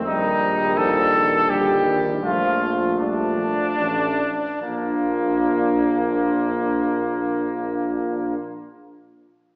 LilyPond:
<<
  \new Staff \with { instrumentName = "Trumpet" } { \time 3/4 \key bes \major \tempo 4 = 72 ees'4 a'4 g'4 | f'8 r8 d'2 | bes2.~ | bes2. | }
  \new Staff \with { instrumentName = "Flugelhorn" } { \clef bass \time 3/4 \key bes \major g2 g4 | a2~ a8 r8 | f'2.~ | f'2. | }
  \new Staff \with { instrumentName = "French horn" } { \clef bass \time 3/4 \key bes \major g4 f8 ees8 d8 ees8 | f4 g8 f8 a8 r8 | d'2.~ | d'2. | }
  \new Staff \with { instrumentName = "Trombone" } { \clef bass \time 3/4 \key bes \major ees2 ees4 | f2~ f8 r8 | bes2.~ | bes2. | }
  \new Staff \with { instrumentName = "Tuba" } { \clef bass \time 3/4 \key bes \major bes,,2. | bes,,4. r8 a,,8 r8 | bes,,2.~ | bes,,2. | }
>>